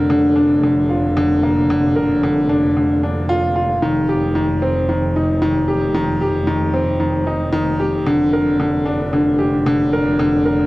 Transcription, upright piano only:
0.00 0.10 D3 loud
0.00 1.96 A#4 medium
0.10 0.36 D3 loud
0.36 0.52 D4 medium
0.63 0.89 D3 medium
0.89 1.05 F4 medium
1.17 1.42 D3 loud
1.43 1.69 A#3 medium
1.70 1.95 D3 loud
1.96 2.22 A#4 medium
2.23 2.49 D3 medium
2.49 2.65 D4 medium
2.77 3.02 D3 medium
3.03 3.28 D4 medium
3.29 3.44 F4 loud
3.56 3.81 F4 medium
3.82 4.08 D#3 loud
4.09 4.34 G4 medium
4.35 4.61 D#3 medium
4.62 4.77 C4 medium
4.89 5.14 D#3 medium
5.16 5.31 D#4 medium
5.42 5.67 D#3 loud
5.68 5.83 G4 medium
5.95 6.20 D#3 loud
6.21 6.47 G4 medium
6.47 6.73 D#3 loud
6.74 6.89 C4 medium
7.00 7.26 D#3 medium
7.27 7.42 D#4 medium
7.53 7.79 D#3 loud
7.79 7.95 G4 medium
8.06 8.32 D3 loud
8.33 8.59 A#4 medium
8.60 8.85 D3 medium
8.86 9.01 D4 medium
9.13 9.38 D3 medium
9.39 9.54 G4 medium
9.66 9.92 D3 loud
9.93 10.08 A#4 medium
10.19 10.45 D3 loud
10.46 10.66 A#4 medium

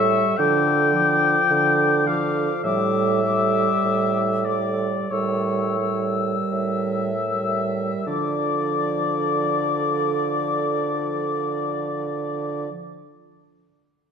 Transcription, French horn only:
0.00 0.38 G3 soft
0.39 0.94 F3 medium
0.94 2.05 F3 medium
2.08 2.64 F3 medium
2.66 3.23 G3 medium
3.24 4.45 G3 soft
4.47 5.11 G3 soft
5.12 5.79 G3 soft
5.80 7.12 G3 soft
7.29 8.06 G3 soft
8.07 12.69 F3 soft

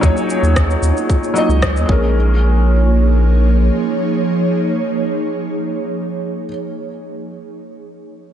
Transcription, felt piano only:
0.00 1.34 F#3 medium
0.00 0.03 D#4 medium
0.00 1.33 D#4 medium
0.00 0.05 C#5 medium
0.05 1.34 C#5 medium
1.34 1.88 F#3 medium
1.34 1.89 D#4 medium
1.38 1.90 D#5 medium
1.86 6.43 G#3 medium
1.86 6.46 C#4 medium
1.92 6.49 A#4 medium

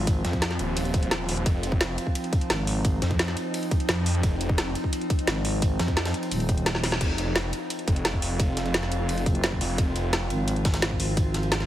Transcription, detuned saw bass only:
0.25 0.58 F2 loud
0.59 1.45 D#1 loud
1.46 1.97 F1 loud
3.02 3.35 F2 loud
3.89 4.22 F2 loud
4.23 4.74 F1 loud
5.79 6.13 F2 medium
7.01 7.17 F1 medium
7.18 7.52 F1 loud
7.88 9.25 F1 loud
9.61 9.77 F1 loud
9.78 9.94 F1 loud
9.96 10.29 F1 loud

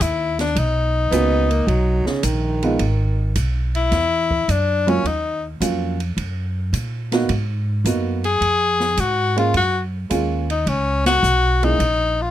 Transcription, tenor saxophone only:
0.02 0.40 E4 medium
0.41 0.60 D4 medium
0.59 2.25 D#4 medium
3.76 4.52 E4 medium
4.50 4.91 D4 medium
4.89 5.09 C#4 medium
5.07 5.45 D#4 medium
8.25 9.02 G#4 loud
9.00 9.38 F#4 medium
9.39 9.55 F4 medium
9.57 9.80 F#4 medium
10.51 10.70 D#4 medium
10.69 11.06 C#4 medium
11.07 11.66 F#4 loud
11.64 12.23 D#4 medium
12.22 12.31 F4 medium

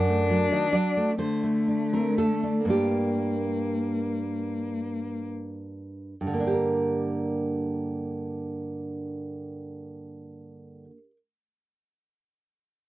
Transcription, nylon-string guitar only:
0.00 0.51 F#2 medium
0.00 0.49 F#5 medium
0.09 0.43 A3 soft
0.30 0.65 F#3 soft
0.52 0.74 D#3 soft
0.52 0.72 D#5 medium
0.73 1.10 F#3 soft
0.73 1.17 D5 medium
0.97 1.18 A3 soft
1.18 2.64 D3 medium
1.18 1.89 C5 medium
1.43 1.82 A3 soft
1.68 2.07 D4 soft
1.93 2.17 C4 soft
1.93 2.18 A#4 medium
2.18 2.59 A3 soft
2.18 2.67 A4 medium
2.43 2.67 D4 soft
2.65 6.14 G2 medium
2.65 6.15 A#3 soft
2.65 6.15 D4 soft
2.70 5.53 G4 medium
6.21 10.84 G2 soft
6.27 10.90 D3 soft
6.33 10.97 A#3 soft
6.40 11.03 D4 soft
6.47 11.10 G4 soft
6.53 11.16 A#4 soft

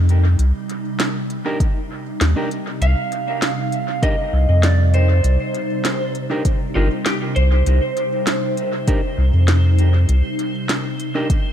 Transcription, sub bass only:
0.00 0.36 F2 loud
0.39 0.52 C2 loud
2.21 2.35 D#2 medium
2.81 2.95 C2 medium
4.33 4.47 C2 medium
4.49 5.21 F2 loud
5.24 5.38 C2 loud
6.76 6.89 G1 medium
7.36 7.63 C2 loud
7.67 7.80 C2 medium
9.18 9.31 C2 medium
9.33 10.06 F2 loud
10.09 10.22 C2 loud

